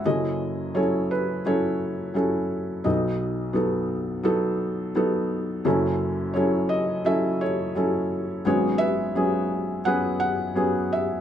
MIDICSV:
0, 0, Header, 1, 2, 480
1, 0, Start_track
1, 0, Tempo, 700935
1, 30, Time_signature, 4, 2, 24, 8
1, 7675, End_track
2, 0, Start_track
2, 0, Title_t, "Felt piano"
2, 0, Program_c, 0, 0
2, 0, Control_c, 0, 64, 127
2, 34, Note_on_c, 0, 54, 52
2, 38, Note_on_c, 0, 75, 74
2, 40, Control_c, 0, 64, 0
2, 41, Note_on_c, 0, 30, 47
2, 41, Note_on_c, 0, 61, 50
2, 42, Note_on_c, 0, 42, 49
2, 43, Note_on_c, 0, 69, 53
2, 45, Note_on_c, 0, 64, 51
2, 152, Control_c, 0, 64, 127
2, 486, Note_off_c, 0, 54, 0
2, 490, Note_off_c, 0, 61, 0
2, 492, Note_off_c, 0, 64, 0
2, 509, Note_on_c, 0, 54, 56
2, 511, Note_on_c, 0, 73, 69
2, 512, Note_off_c, 0, 69, 0
2, 515, Note_on_c, 0, 61, 50
2, 517, Note_on_c, 0, 64, 51
2, 522, Note_on_c, 0, 69, 64
2, 529, Note_off_c, 0, 75, 0
2, 758, Note_off_c, 0, 73, 0
2, 760, Note_on_c, 0, 71, 66
2, 963, Note_off_c, 0, 54, 0
2, 967, Note_off_c, 0, 61, 0
2, 968, Note_off_c, 0, 64, 0
2, 970, Note_off_c, 0, 69, 0
2, 996, Note_on_c, 0, 54, 60
2, 997, Note_on_c, 0, 61, 56
2, 999, Note_on_c, 0, 64, 54
2, 1002, Note_off_c, 0, 71, 0
2, 1004, Note_on_c, 0, 73, 75
2, 1009, Note_on_c, 0, 69, 64
2, 1447, Note_off_c, 0, 54, 0
2, 1448, Note_off_c, 0, 61, 0
2, 1449, Note_off_c, 0, 64, 0
2, 1454, Note_off_c, 0, 69, 0
2, 1465, Note_on_c, 0, 54, 56
2, 1470, Note_on_c, 0, 61, 51
2, 1474, Note_on_c, 0, 64, 50
2, 1481, Note_on_c, 0, 69, 63
2, 1921, Note_off_c, 0, 54, 0
2, 1924, Note_off_c, 0, 61, 0
2, 1926, Note_off_c, 0, 64, 0
2, 1928, Note_off_c, 0, 30, 0
2, 1928, Note_off_c, 0, 42, 0
2, 1929, Note_off_c, 0, 69, 0
2, 1946, Note_on_c, 0, 75, 62
2, 1948, Note_on_c, 0, 54, 58
2, 1949, Note_on_c, 0, 59, 53
2, 1952, Note_on_c, 0, 47, 49
2, 1954, Note_on_c, 0, 35, 50
2, 1956, Note_on_c, 0, 63, 52
2, 1956, Note_on_c, 0, 69, 45
2, 1959, Control_c, 0, 64, 0
2, 1985, Note_off_c, 0, 73, 0
2, 2093, Control_c, 0, 64, 127
2, 2401, Note_off_c, 0, 75, 0
2, 2403, Note_off_c, 0, 54, 0
2, 2403, Note_off_c, 0, 59, 0
2, 2407, Note_off_c, 0, 63, 0
2, 2418, Note_on_c, 0, 54, 60
2, 2421, Note_on_c, 0, 59, 55
2, 2425, Note_off_c, 0, 69, 0
2, 2427, Note_on_c, 0, 63, 52
2, 2435, Note_on_c, 0, 69, 65
2, 2877, Note_off_c, 0, 54, 0
2, 2879, Note_off_c, 0, 59, 0
2, 2882, Note_off_c, 0, 63, 0
2, 2886, Note_off_c, 0, 69, 0
2, 2899, Note_on_c, 0, 54, 74
2, 2906, Note_on_c, 0, 59, 61
2, 2910, Note_on_c, 0, 63, 61
2, 2910, Note_on_c, 0, 69, 81
2, 3357, Note_off_c, 0, 54, 0
2, 3360, Note_off_c, 0, 59, 0
2, 3362, Note_off_c, 0, 69, 0
2, 3363, Note_off_c, 0, 63, 0
2, 3390, Note_on_c, 0, 54, 64
2, 3391, Note_on_c, 0, 63, 61
2, 3394, Note_on_c, 0, 59, 61
2, 3401, Note_on_c, 0, 69, 76
2, 3841, Note_off_c, 0, 47, 0
2, 3842, Note_off_c, 0, 35, 0
2, 3842, Note_off_c, 0, 54, 0
2, 3843, Note_off_c, 0, 63, 0
2, 3844, Note_off_c, 0, 59, 0
2, 3848, Note_off_c, 0, 69, 0
2, 3866, Note_on_c, 0, 54, 70
2, 3868, Note_on_c, 0, 61, 64
2, 3870, Note_on_c, 0, 42, 58
2, 3871, Note_on_c, 0, 30, 57
2, 3873, Note_on_c, 0, 64, 63
2, 3877, Control_c, 0, 64, 0
2, 3879, Note_on_c, 0, 69, 76
2, 3999, Control_c, 0, 64, 127
2, 4320, Note_off_c, 0, 54, 0
2, 4321, Note_off_c, 0, 61, 0
2, 4323, Note_off_c, 0, 64, 0
2, 4327, Note_off_c, 0, 69, 0
2, 4338, Note_on_c, 0, 73, 67
2, 4352, Note_on_c, 0, 54, 62
2, 4355, Note_on_c, 0, 64, 52
2, 4356, Note_on_c, 0, 61, 57
2, 4358, Note_on_c, 0, 69, 62
2, 4582, Note_on_c, 0, 75, 74
2, 4589, Note_off_c, 0, 73, 0
2, 4803, Note_off_c, 0, 54, 0
2, 4804, Note_off_c, 0, 64, 0
2, 4805, Note_off_c, 0, 61, 0
2, 4806, Note_off_c, 0, 69, 0
2, 4828, Note_on_c, 0, 54, 64
2, 4831, Note_off_c, 0, 75, 0
2, 4832, Note_on_c, 0, 61, 58
2, 4834, Note_on_c, 0, 76, 80
2, 4838, Note_on_c, 0, 64, 55
2, 4838, Note_on_c, 0, 69, 67
2, 5075, Note_on_c, 0, 73, 76
2, 5077, Note_off_c, 0, 76, 0
2, 5078, Note_off_c, 0, 69, 0
2, 5089, Note_on_c, 0, 69, 54
2, 5280, Note_off_c, 0, 54, 0
2, 5282, Note_off_c, 0, 61, 0
2, 5285, Note_off_c, 0, 64, 0
2, 5307, Note_on_c, 0, 54, 56
2, 5311, Note_off_c, 0, 69, 0
2, 5316, Note_on_c, 0, 61, 53
2, 5320, Note_on_c, 0, 64, 53
2, 5322, Note_on_c, 0, 69, 63
2, 5760, Note_off_c, 0, 42, 0
2, 5760, Note_off_c, 0, 54, 0
2, 5761, Note_off_c, 0, 30, 0
2, 5765, Note_off_c, 0, 61, 0
2, 5767, Note_off_c, 0, 64, 0
2, 5768, Note_off_c, 0, 69, 0
2, 5786, Note_on_c, 0, 54, 58
2, 5787, Note_off_c, 0, 73, 0
2, 5788, Note_on_c, 0, 59, 53
2, 5791, Note_on_c, 0, 61, 53
2, 5793, Note_on_c, 0, 32, 52
2, 5793, Note_on_c, 0, 44, 50
2, 5794, Control_c, 0, 64, 0
2, 5797, Note_on_c, 0, 73, 76
2, 5800, Note_on_c, 0, 68, 64
2, 5810, Note_on_c, 0, 66, 53
2, 5923, Control_c, 0, 64, 127
2, 6014, Note_on_c, 0, 76, 92
2, 6026, Note_on_c, 0, 71, 57
2, 6039, Note_off_c, 0, 73, 0
2, 6240, Note_off_c, 0, 54, 0
2, 6241, Note_off_c, 0, 59, 0
2, 6243, Note_off_c, 0, 61, 0
2, 6247, Note_off_c, 0, 68, 0
2, 6267, Note_on_c, 0, 59, 51
2, 6269, Note_on_c, 0, 54, 57
2, 6273, Note_on_c, 0, 61, 50
2, 6278, Note_on_c, 0, 68, 65
2, 6714, Note_off_c, 0, 76, 0
2, 6721, Note_off_c, 0, 59, 0
2, 6722, Note_off_c, 0, 54, 0
2, 6724, Note_off_c, 0, 61, 0
2, 6727, Note_off_c, 0, 68, 0
2, 6732, Note_off_c, 0, 66, 0
2, 6745, Note_on_c, 0, 54, 58
2, 6746, Note_on_c, 0, 78, 87
2, 6748, Note_off_c, 0, 71, 0
2, 6754, Note_on_c, 0, 59, 52
2, 6758, Note_on_c, 0, 61, 53
2, 6758, Note_on_c, 0, 71, 61
2, 6761, Note_on_c, 0, 68, 66
2, 6970, Note_off_c, 0, 78, 0
2, 6984, Note_on_c, 0, 78, 81
2, 7201, Note_off_c, 0, 54, 0
2, 7205, Note_off_c, 0, 59, 0
2, 7207, Note_off_c, 0, 61, 0
2, 7209, Note_off_c, 0, 68, 0
2, 7223, Note_on_c, 0, 54, 57
2, 7228, Note_on_c, 0, 59, 50
2, 7230, Note_on_c, 0, 61, 52
2, 7233, Note_on_c, 0, 68, 60
2, 7482, Note_off_c, 0, 78, 0
2, 7482, Note_on_c, 0, 76, 75
2, 7675, Note_off_c, 0, 32, 0
2, 7675, Note_off_c, 0, 44, 0
2, 7675, Note_off_c, 0, 54, 0
2, 7675, Note_off_c, 0, 59, 0
2, 7675, Note_off_c, 0, 61, 0
2, 7675, Note_off_c, 0, 68, 0
2, 7675, Note_off_c, 0, 71, 0
2, 7675, Note_off_c, 0, 76, 0
2, 7675, End_track
0, 0, End_of_file